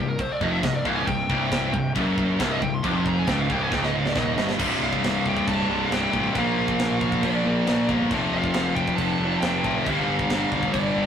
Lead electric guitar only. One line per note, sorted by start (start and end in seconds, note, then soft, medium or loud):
0.09 0.19 A#4 medium
0.21 0.31 C5 medium
0.33 0.43 D5 medium
0.43 0.52 D#5 loud
0.52 0.64 E5 loud
0.64 0.74 D#5 medium
0.74 0.85 D5 medium
0.86 0.95 F5 loud
0.95 1.06 G#5 loud
1.07 1.91 G5 loud
2.51 2.62 D#5 loud
2.62 2.72 G5 loud
2.74 2.84 C6 loud
2.85 2.95 D6 loud
2.96 3.06 C6 loud
3.08 3.17 A#5 loud
3.19 3.28 G#5 medium
3.29 3.39 G5 medium
3.40 3.52 F5 medium
3.52 3.63 G5 loud
3.63 3.72 G#5 loud
3.74 3.84 G5 medium
3.85 3.94 D#5 medium
3.96 4.06 F5 loud
4.07 4.16 D5 medium
4.18 4.48 D#5 medium
4.83 5.28 F5 medium
5.28 5.47 G5 loud
5.48 5.82 A5 loud
5.85 5.92 F5 medium
5.92 6.37 G5 loud
6.38 7.24 F5 loud
7.24 7.85 D5 medium
8.33 8.73 F5 loud
8.75 8.96 G5 loud
8.96 9.40 A5 loud
9.40 9.86 G5 loud
9.84 10.69 F5 loud
10.72 11.06 D5 medium